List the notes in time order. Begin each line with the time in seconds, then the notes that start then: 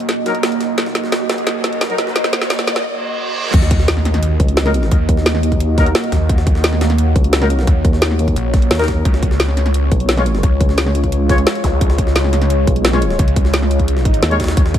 Already playing: A#3 F#4 D#5, riser
0.00 closed hi-hat
0.09 snare, closed hi-hat
0.26 A#1 F#3 D#4 A#4, snare, closed hi-hat
0.35 closed hi-hat
0.43 D#2, snare, closed hi-hat
0.52 closed hi-hat
0.60 snare, closed hi-hat
0.78 D#2, snare, closed hi-hat
0.86 snare
0.95 D#2, snare, closed hi-hat
1.04 snare
1.12 snare, closed hi-hat
1.29 D#2, snare, closed hi-hat
1.38 closed hi-hat
1.47 F#2, snare, closed hi-hat
1.64 snare, closed hi-hat
1.73 closed hi-hat
1.81 snare, closed hi-hat
1.90 F#3 D#4 A#4, closed hi-hat
1.98 snare, closed hi-hat
2.07 snare
2.16 snare, closed hi-hat
2.24 snare, closed hi-hat
2.33 D#2, snare, closed hi-hat
2.42 snare
2.50 snare, closed hi-hat
2.59 snare
2.67 D#2, snare, closed hi-hat
2.76 snare, closed hi-hat
2.85 reverse cymbal
3.54 D#2 A#3 F#4 D#5, kick, closed hi-hat, crash, impact
3.62 snare
3.71 kick, closed hi-hat
3.80 snare
3.88 snare, closed hi-hat
3.97 snare
4.05 snare, closed hi-hat
4.14 snare, closed hi-hat
4.23 closed hi-hat
4.40 C#2, kick, closed hi-hat
4.48 closed hi-hat
4.57 snare, closed hi-hat
4.66 F#3 D#4 A#4, snare, closed hi-hat
4.74 closed hi-hat
4.83 snare
4.91 D#2, kick, closed hi-hat
5.09 D#2, kick, closed hi-hat
5.17 snare
5.26 snare, closed hi-hat
5.35 snare
5.43 closed hi-hat
5.52 kick, closed hi-hat
5.60 closed hi-hat
5.78 F#3 D#4 A#4, kick, snare, closed hi-hat
5.86 closed hi-hat
5.95 snare, closed hi-hat
6.04 closed hi-hat
6.12 D#2, kick, snare, closed hi-hat
6.29 D#2 C#5, kick, closed hi-hat
6.38 snare
6.47 kick, closed hi-hat
6.55 snare
6.64 snare, closed hi-hat
6.73 snare
6.81 snare, closed hi-hat
6.90 snare, closed hi-hat
6.98 closed hi-hat
7.16 C#2, kick, closed hi-hat
7.24 closed hi-hat
7.33 snare, closed hi-hat
7.41 F#3 D#4 A#4, snare, closed hi-hat
7.50 closed hi-hat
7.59 snare
7.67 D#2, kick, closed hi-hat
7.85 D#2, kick, closed hi-hat
7.93 snare
8.02 snare, closed hi-hat
8.11 snare
8.19 closed hi-hat
8.28 kick, closed hi-hat
8.36 A#1, closed hi-hat
8.54 kick, snare, closed hi-hat
8.62 closed hi-hat
8.71 D#2, snare, closed hi-hat
8.75 snare, closed hi-hat
8.79 F#3 D#4 A#4, snare, closed hi-hat
8.84 snare, closed hi-hat
8.88 kick, snare, closed hi-hat
9.05 C#2 G#3 F4, kick, closed hi-hat
9.14 snare
9.23 kick, closed hi-hat
9.31 snare
9.40 snare, closed hi-hat
9.48 snare
9.57 snare, closed hi-hat
9.66 snare, closed hi-hat
9.74 closed hi-hat
9.92 B1, kick, closed hi-hat
10.00 closed hi-hat
10.09 snare, closed hi-hat
10.17 G#3 F4 C#5, snare, closed hi-hat
10.26 closed hi-hat
10.35 snare
10.43 C#2, kick, closed hi-hat
10.61 C#2, kick, closed hi-hat
10.69 snare
10.78 snare, closed hi-hat
10.86 snare
10.95 closed hi-hat
11.04 kick, closed hi-hat
11.12 closed hi-hat
11.29 G#3 F4 C#5, kick, snare, closed hi-hat
11.38 closed hi-hat
11.47 snare, closed hi-hat
11.55 closed hi-hat
11.64 C#2, kick, snare, closed hi-hat, zap
11.81 C#2, kick, closed hi-hat
11.90 snare
11.98 kick, closed hi-hat
12.07 snare
12.16 snare, closed hi-hat
12.24 snare
12.33 snare, closed hi-hat
12.42 snare, closed hi-hat
12.50 closed hi-hat
12.67 B1, kick, closed hi-hat
12.76 closed hi-hat
12.85 snare, closed hi-hat
12.93 G#3 F4 C#5, snare, closed hi-hat
13.02 closed hi-hat
13.10 snare
13.19 C#2, kick, closed hi-hat
13.28 closed hi-hat
13.36 C#2, kick, closed hi-hat
13.45 snare
13.54 snare, closed hi-hat
13.62 snare
13.71 closed hi-hat
13.79 kick, closed hi-hat
13.88 closed hi-hat, swell
13.97 snare
14.05 kick, closed hi-hat
14.14 closed hi-hat
14.23 D#2, snare, closed hi-hat
14.31 G#3 F4 C#5, closed hi-hat
14.40 kick, snare, closed hi-hat
14.44 snare, closed hi-hat
14.48 snare, closed hi-hat
14.57 D#2, kick, closed hi-hat
14.66 snare
14.74 kick, closed hi-hat